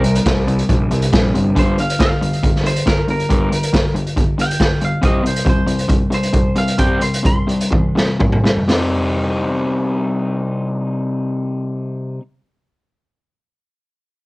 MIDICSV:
0, 0, Header, 1, 5, 480
1, 0, Start_track
1, 0, Key_signature, -3, "minor"
1, 0, Tempo, 433839
1, 1715, Time_signature, 4, 2, 24, 8
1, 6036, Tempo, 449438
1, 7956, Tempo, 487805
1, 9396, Tempo, 512383
1, 14588, End_track
2, 0, Start_track
2, 0, Title_t, "Clean electric guitar"
2, 0, Program_c, 0, 27
2, 0, Note_on_c, 0, 70, 81
2, 505, Note_off_c, 0, 70, 0
2, 1759, Note_on_c, 0, 72, 74
2, 1970, Note_off_c, 0, 72, 0
2, 1992, Note_on_c, 0, 77, 67
2, 2207, Note_off_c, 0, 77, 0
2, 2224, Note_on_c, 0, 77, 65
2, 2908, Note_off_c, 0, 77, 0
2, 2952, Note_on_c, 0, 72, 68
2, 3167, Note_off_c, 0, 72, 0
2, 3180, Note_on_c, 0, 70, 78
2, 3400, Note_off_c, 0, 70, 0
2, 3434, Note_on_c, 0, 70, 87
2, 4346, Note_off_c, 0, 70, 0
2, 4884, Note_on_c, 0, 79, 83
2, 5325, Note_off_c, 0, 79, 0
2, 5363, Note_on_c, 0, 77, 69
2, 5572, Note_off_c, 0, 77, 0
2, 5587, Note_on_c, 0, 75, 69
2, 5804, Note_off_c, 0, 75, 0
2, 5833, Note_on_c, 0, 72, 64
2, 6048, Note_off_c, 0, 72, 0
2, 6076, Note_on_c, 0, 72, 88
2, 6511, Note_off_c, 0, 72, 0
2, 6770, Note_on_c, 0, 72, 75
2, 7220, Note_off_c, 0, 72, 0
2, 7237, Note_on_c, 0, 77, 70
2, 7457, Note_off_c, 0, 77, 0
2, 7462, Note_on_c, 0, 79, 68
2, 7700, Note_off_c, 0, 79, 0
2, 7710, Note_on_c, 0, 84, 64
2, 7950, Note_off_c, 0, 84, 0
2, 7968, Note_on_c, 0, 84, 78
2, 8879, Note_off_c, 0, 84, 0
2, 14588, End_track
3, 0, Start_track
3, 0, Title_t, "Overdriven electric guitar"
3, 0, Program_c, 1, 29
3, 43, Note_on_c, 1, 48, 52
3, 44, Note_on_c, 1, 55, 65
3, 255, Note_off_c, 1, 48, 0
3, 256, Note_off_c, 1, 55, 0
3, 287, Note_on_c, 1, 48, 75
3, 291, Note_on_c, 1, 55, 87
3, 497, Note_off_c, 1, 48, 0
3, 499, Note_off_c, 1, 55, 0
3, 526, Note_on_c, 1, 48, 63
3, 533, Note_on_c, 1, 55, 66
3, 737, Note_off_c, 1, 48, 0
3, 740, Note_off_c, 1, 55, 0
3, 764, Note_on_c, 1, 48, 64
3, 767, Note_on_c, 1, 55, 66
3, 976, Note_off_c, 1, 48, 0
3, 977, Note_off_c, 1, 55, 0
3, 1006, Note_on_c, 1, 55, 69
3, 1010, Note_on_c, 1, 48, 60
3, 1217, Note_off_c, 1, 55, 0
3, 1218, Note_off_c, 1, 48, 0
3, 1246, Note_on_c, 1, 55, 68
3, 1248, Note_on_c, 1, 48, 63
3, 1456, Note_off_c, 1, 55, 0
3, 1457, Note_off_c, 1, 48, 0
3, 1488, Note_on_c, 1, 48, 63
3, 1491, Note_on_c, 1, 55, 69
3, 1697, Note_off_c, 1, 48, 0
3, 1699, Note_off_c, 1, 55, 0
3, 1720, Note_on_c, 1, 43, 89
3, 1728, Note_on_c, 1, 50, 93
3, 1735, Note_on_c, 1, 55, 99
3, 1943, Note_off_c, 1, 43, 0
3, 1947, Note_off_c, 1, 50, 0
3, 1950, Note_off_c, 1, 55, 0
3, 1979, Note_on_c, 1, 43, 52
3, 1982, Note_on_c, 1, 50, 65
3, 2183, Note_off_c, 1, 43, 0
3, 2184, Note_off_c, 1, 50, 0
3, 2204, Note_on_c, 1, 43, 61
3, 2207, Note_on_c, 1, 50, 71
3, 2415, Note_off_c, 1, 43, 0
3, 2417, Note_off_c, 1, 50, 0
3, 2448, Note_on_c, 1, 43, 62
3, 2450, Note_on_c, 1, 50, 70
3, 2657, Note_off_c, 1, 43, 0
3, 2658, Note_off_c, 1, 50, 0
3, 2689, Note_on_c, 1, 43, 53
3, 2693, Note_on_c, 1, 50, 68
3, 2897, Note_off_c, 1, 43, 0
3, 2900, Note_off_c, 1, 50, 0
3, 2913, Note_on_c, 1, 50, 68
3, 2914, Note_on_c, 1, 43, 70
3, 3129, Note_off_c, 1, 50, 0
3, 3130, Note_off_c, 1, 43, 0
3, 3165, Note_on_c, 1, 43, 68
3, 3170, Note_on_c, 1, 50, 76
3, 3375, Note_off_c, 1, 43, 0
3, 3378, Note_off_c, 1, 50, 0
3, 3406, Note_on_c, 1, 43, 61
3, 3414, Note_on_c, 1, 50, 62
3, 3616, Note_off_c, 1, 43, 0
3, 3620, Note_off_c, 1, 50, 0
3, 3641, Note_on_c, 1, 43, 74
3, 3647, Note_on_c, 1, 50, 80
3, 3657, Note_on_c, 1, 55, 95
3, 3863, Note_off_c, 1, 43, 0
3, 3866, Note_off_c, 1, 50, 0
3, 3871, Note_off_c, 1, 55, 0
3, 3882, Note_on_c, 1, 43, 62
3, 3884, Note_on_c, 1, 50, 58
3, 4094, Note_off_c, 1, 43, 0
3, 4095, Note_off_c, 1, 50, 0
3, 4126, Note_on_c, 1, 43, 65
3, 4132, Note_on_c, 1, 50, 78
3, 4336, Note_off_c, 1, 43, 0
3, 4339, Note_off_c, 1, 50, 0
3, 4364, Note_on_c, 1, 43, 58
3, 4370, Note_on_c, 1, 50, 56
3, 4575, Note_off_c, 1, 43, 0
3, 4578, Note_off_c, 1, 50, 0
3, 4608, Note_on_c, 1, 43, 60
3, 4615, Note_on_c, 1, 50, 61
3, 4817, Note_off_c, 1, 43, 0
3, 4820, Note_off_c, 1, 50, 0
3, 4847, Note_on_c, 1, 43, 60
3, 4847, Note_on_c, 1, 50, 61
3, 5056, Note_off_c, 1, 43, 0
3, 5056, Note_off_c, 1, 50, 0
3, 5087, Note_on_c, 1, 43, 66
3, 5093, Note_on_c, 1, 50, 76
3, 5296, Note_off_c, 1, 43, 0
3, 5299, Note_off_c, 1, 50, 0
3, 5330, Note_on_c, 1, 43, 60
3, 5335, Note_on_c, 1, 50, 63
3, 5538, Note_off_c, 1, 43, 0
3, 5541, Note_off_c, 1, 50, 0
3, 5550, Note_on_c, 1, 48, 86
3, 5558, Note_on_c, 1, 55, 82
3, 5569, Note_on_c, 1, 60, 83
3, 5778, Note_off_c, 1, 48, 0
3, 5779, Note_off_c, 1, 55, 0
3, 5788, Note_off_c, 1, 60, 0
3, 5790, Note_on_c, 1, 48, 57
3, 5792, Note_on_c, 1, 55, 59
3, 6009, Note_off_c, 1, 48, 0
3, 6010, Note_off_c, 1, 55, 0
3, 6027, Note_on_c, 1, 55, 82
3, 6029, Note_on_c, 1, 48, 64
3, 6242, Note_off_c, 1, 55, 0
3, 6243, Note_off_c, 1, 48, 0
3, 6258, Note_on_c, 1, 48, 62
3, 6264, Note_on_c, 1, 55, 59
3, 6475, Note_off_c, 1, 48, 0
3, 6478, Note_off_c, 1, 55, 0
3, 6489, Note_on_c, 1, 48, 53
3, 6495, Note_on_c, 1, 55, 62
3, 6709, Note_off_c, 1, 48, 0
3, 6713, Note_off_c, 1, 55, 0
3, 6727, Note_on_c, 1, 48, 60
3, 6732, Note_on_c, 1, 55, 62
3, 6948, Note_off_c, 1, 48, 0
3, 6951, Note_off_c, 1, 55, 0
3, 6966, Note_on_c, 1, 48, 69
3, 6972, Note_on_c, 1, 55, 73
3, 7189, Note_off_c, 1, 48, 0
3, 7192, Note_off_c, 1, 55, 0
3, 7211, Note_on_c, 1, 48, 54
3, 7216, Note_on_c, 1, 55, 61
3, 7434, Note_off_c, 1, 48, 0
3, 7436, Note_off_c, 1, 55, 0
3, 7450, Note_on_c, 1, 48, 79
3, 7458, Note_on_c, 1, 55, 80
3, 7465, Note_on_c, 1, 60, 96
3, 7674, Note_off_c, 1, 48, 0
3, 7676, Note_off_c, 1, 55, 0
3, 7687, Note_on_c, 1, 48, 55
3, 7689, Note_on_c, 1, 55, 58
3, 7694, Note_off_c, 1, 60, 0
3, 7921, Note_off_c, 1, 48, 0
3, 7922, Note_off_c, 1, 55, 0
3, 7932, Note_on_c, 1, 48, 61
3, 7941, Note_on_c, 1, 55, 67
3, 8153, Note_off_c, 1, 48, 0
3, 8157, Note_off_c, 1, 55, 0
3, 8172, Note_on_c, 1, 48, 53
3, 8177, Note_on_c, 1, 55, 65
3, 8391, Note_off_c, 1, 48, 0
3, 8391, Note_off_c, 1, 55, 0
3, 8402, Note_on_c, 1, 55, 65
3, 8403, Note_on_c, 1, 48, 61
3, 8626, Note_off_c, 1, 48, 0
3, 8626, Note_off_c, 1, 55, 0
3, 8644, Note_on_c, 1, 48, 63
3, 8648, Note_on_c, 1, 55, 62
3, 8869, Note_off_c, 1, 48, 0
3, 8871, Note_off_c, 1, 55, 0
3, 8882, Note_on_c, 1, 48, 68
3, 8885, Note_on_c, 1, 55, 70
3, 9109, Note_off_c, 1, 48, 0
3, 9114, Note_off_c, 1, 55, 0
3, 9121, Note_on_c, 1, 48, 51
3, 9127, Note_on_c, 1, 55, 58
3, 9351, Note_off_c, 1, 48, 0
3, 9361, Note_off_c, 1, 55, 0
3, 9363, Note_on_c, 1, 48, 83
3, 9378, Note_on_c, 1, 55, 78
3, 9390, Note_on_c, 1, 60, 75
3, 9398, Note_on_c, 1, 63, 91
3, 12643, Note_off_c, 1, 48, 0
3, 12658, Note_off_c, 1, 55, 0
3, 12669, Note_off_c, 1, 60, 0
3, 12677, Note_off_c, 1, 63, 0
3, 14588, End_track
4, 0, Start_track
4, 0, Title_t, "Picked electric bass"
4, 0, Program_c, 2, 34
4, 0, Note_on_c, 2, 36, 100
4, 206, Note_off_c, 2, 36, 0
4, 281, Note_on_c, 2, 36, 69
4, 688, Note_off_c, 2, 36, 0
4, 766, Note_on_c, 2, 34, 75
4, 966, Note_off_c, 2, 34, 0
4, 1016, Note_on_c, 2, 36, 76
4, 1222, Note_off_c, 2, 36, 0
4, 1251, Note_on_c, 2, 34, 76
4, 1460, Note_off_c, 2, 34, 0
4, 1493, Note_on_c, 2, 31, 68
4, 1701, Note_off_c, 2, 31, 0
4, 14588, End_track
5, 0, Start_track
5, 0, Title_t, "Drums"
5, 42, Note_on_c, 9, 42, 57
5, 153, Note_off_c, 9, 42, 0
5, 168, Note_on_c, 9, 42, 58
5, 279, Note_off_c, 9, 42, 0
5, 286, Note_on_c, 9, 36, 105
5, 286, Note_on_c, 9, 42, 62
5, 296, Note_on_c, 9, 38, 110
5, 397, Note_off_c, 9, 36, 0
5, 397, Note_off_c, 9, 42, 0
5, 407, Note_off_c, 9, 38, 0
5, 531, Note_on_c, 9, 42, 55
5, 642, Note_off_c, 9, 42, 0
5, 650, Note_on_c, 9, 42, 55
5, 760, Note_off_c, 9, 42, 0
5, 766, Note_on_c, 9, 36, 93
5, 767, Note_on_c, 9, 42, 60
5, 876, Note_off_c, 9, 36, 0
5, 878, Note_off_c, 9, 42, 0
5, 1006, Note_on_c, 9, 42, 52
5, 1117, Note_off_c, 9, 42, 0
5, 1127, Note_on_c, 9, 42, 55
5, 1237, Note_off_c, 9, 42, 0
5, 1248, Note_on_c, 9, 42, 57
5, 1250, Note_on_c, 9, 36, 100
5, 1258, Note_on_c, 9, 38, 93
5, 1359, Note_off_c, 9, 42, 0
5, 1360, Note_off_c, 9, 36, 0
5, 1369, Note_off_c, 9, 38, 0
5, 1495, Note_on_c, 9, 42, 51
5, 1606, Note_off_c, 9, 42, 0
5, 1730, Note_on_c, 9, 36, 87
5, 1735, Note_on_c, 9, 42, 53
5, 1841, Note_off_c, 9, 36, 0
5, 1846, Note_off_c, 9, 42, 0
5, 1971, Note_on_c, 9, 42, 49
5, 2081, Note_off_c, 9, 42, 0
5, 2097, Note_on_c, 9, 42, 53
5, 2208, Note_off_c, 9, 42, 0
5, 2209, Note_on_c, 9, 42, 61
5, 2211, Note_on_c, 9, 36, 109
5, 2219, Note_on_c, 9, 38, 102
5, 2320, Note_off_c, 9, 42, 0
5, 2322, Note_off_c, 9, 36, 0
5, 2330, Note_off_c, 9, 38, 0
5, 2461, Note_on_c, 9, 42, 52
5, 2571, Note_off_c, 9, 42, 0
5, 2581, Note_on_c, 9, 42, 50
5, 2691, Note_off_c, 9, 42, 0
5, 2694, Note_on_c, 9, 36, 91
5, 2694, Note_on_c, 9, 42, 51
5, 2805, Note_off_c, 9, 36, 0
5, 2805, Note_off_c, 9, 42, 0
5, 2830, Note_on_c, 9, 38, 29
5, 2941, Note_off_c, 9, 38, 0
5, 2943, Note_on_c, 9, 42, 56
5, 3054, Note_off_c, 9, 42, 0
5, 3054, Note_on_c, 9, 42, 55
5, 3165, Note_off_c, 9, 42, 0
5, 3173, Note_on_c, 9, 42, 54
5, 3175, Note_on_c, 9, 36, 96
5, 3183, Note_on_c, 9, 38, 87
5, 3284, Note_off_c, 9, 42, 0
5, 3285, Note_off_c, 9, 36, 0
5, 3294, Note_off_c, 9, 38, 0
5, 3410, Note_on_c, 9, 42, 52
5, 3521, Note_off_c, 9, 42, 0
5, 3535, Note_on_c, 9, 42, 49
5, 3646, Note_off_c, 9, 42, 0
5, 3654, Note_on_c, 9, 42, 56
5, 3655, Note_on_c, 9, 36, 94
5, 3765, Note_off_c, 9, 42, 0
5, 3766, Note_off_c, 9, 36, 0
5, 3898, Note_on_c, 9, 42, 60
5, 4008, Note_off_c, 9, 42, 0
5, 4015, Note_on_c, 9, 42, 62
5, 4126, Note_off_c, 9, 42, 0
5, 4135, Note_on_c, 9, 36, 102
5, 4135, Note_on_c, 9, 42, 65
5, 4145, Note_on_c, 9, 38, 106
5, 4245, Note_off_c, 9, 36, 0
5, 4245, Note_off_c, 9, 42, 0
5, 4255, Note_off_c, 9, 38, 0
5, 4380, Note_on_c, 9, 42, 52
5, 4490, Note_off_c, 9, 42, 0
5, 4501, Note_on_c, 9, 42, 54
5, 4611, Note_off_c, 9, 42, 0
5, 4613, Note_on_c, 9, 36, 93
5, 4618, Note_on_c, 9, 42, 57
5, 4724, Note_off_c, 9, 36, 0
5, 4729, Note_off_c, 9, 42, 0
5, 4859, Note_on_c, 9, 42, 52
5, 4969, Note_off_c, 9, 42, 0
5, 4986, Note_on_c, 9, 42, 52
5, 5089, Note_off_c, 9, 42, 0
5, 5089, Note_on_c, 9, 42, 51
5, 5090, Note_on_c, 9, 36, 85
5, 5099, Note_on_c, 9, 38, 89
5, 5200, Note_off_c, 9, 36, 0
5, 5200, Note_off_c, 9, 42, 0
5, 5210, Note_off_c, 9, 38, 0
5, 5325, Note_on_c, 9, 42, 53
5, 5436, Note_off_c, 9, 42, 0
5, 5562, Note_on_c, 9, 42, 52
5, 5564, Note_on_c, 9, 36, 100
5, 5673, Note_off_c, 9, 42, 0
5, 5675, Note_off_c, 9, 36, 0
5, 5818, Note_on_c, 9, 42, 49
5, 5929, Note_off_c, 9, 42, 0
5, 5930, Note_on_c, 9, 42, 56
5, 6040, Note_off_c, 9, 42, 0
5, 6042, Note_on_c, 9, 36, 108
5, 6048, Note_on_c, 9, 42, 53
5, 6149, Note_off_c, 9, 36, 0
5, 6154, Note_off_c, 9, 42, 0
5, 6269, Note_on_c, 9, 42, 47
5, 6376, Note_off_c, 9, 42, 0
5, 6389, Note_on_c, 9, 42, 45
5, 6495, Note_off_c, 9, 42, 0
5, 6500, Note_on_c, 9, 42, 52
5, 6503, Note_on_c, 9, 36, 92
5, 6606, Note_off_c, 9, 42, 0
5, 6610, Note_off_c, 9, 36, 0
5, 6743, Note_on_c, 9, 42, 49
5, 6850, Note_off_c, 9, 42, 0
5, 6862, Note_on_c, 9, 42, 48
5, 6969, Note_off_c, 9, 42, 0
5, 6972, Note_on_c, 9, 42, 50
5, 6977, Note_on_c, 9, 36, 96
5, 7079, Note_off_c, 9, 42, 0
5, 7084, Note_off_c, 9, 36, 0
5, 7212, Note_on_c, 9, 42, 52
5, 7319, Note_off_c, 9, 42, 0
5, 7339, Note_on_c, 9, 42, 44
5, 7445, Note_off_c, 9, 42, 0
5, 7453, Note_on_c, 9, 42, 57
5, 7458, Note_on_c, 9, 36, 92
5, 7560, Note_off_c, 9, 42, 0
5, 7565, Note_off_c, 9, 36, 0
5, 7698, Note_on_c, 9, 42, 53
5, 7805, Note_off_c, 9, 42, 0
5, 7831, Note_on_c, 9, 42, 58
5, 7938, Note_off_c, 9, 42, 0
5, 7953, Note_on_c, 9, 36, 103
5, 7956, Note_on_c, 9, 42, 60
5, 8052, Note_off_c, 9, 36, 0
5, 8054, Note_off_c, 9, 42, 0
5, 8187, Note_on_c, 9, 42, 46
5, 8286, Note_off_c, 9, 42, 0
5, 8304, Note_on_c, 9, 42, 56
5, 8402, Note_off_c, 9, 42, 0
5, 8417, Note_on_c, 9, 36, 89
5, 8420, Note_on_c, 9, 48, 44
5, 8516, Note_off_c, 9, 36, 0
5, 8518, Note_off_c, 9, 48, 0
5, 8666, Note_on_c, 9, 38, 60
5, 8764, Note_off_c, 9, 38, 0
5, 8888, Note_on_c, 9, 45, 65
5, 8892, Note_on_c, 9, 36, 85
5, 8986, Note_off_c, 9, 45, 0
5, 8991, Note_off_c, 9, 36, 0
5, 9009, Note_on_c, 9, 45, 62
5, 9107, Note_off_c, 9, 45, 0
5, 9137, Note_on_c, 9, 38, 67
5, 9236, Note_off_c, 9, 38, 0
5, 9248, Note_on_c, 9, 43, 62
5, 9347, Note_off_c, 9, 43, 0
5, 9367, Note_on_c, 9, 46, 65
5, 9376, Note_on_c, 9, 38, 83
5, 9462, Note_off_c, 9, 46, 0
5, 9471, Note_off_c, 9, 38, 0
5, 14588, End_track
0, 0, End_of_file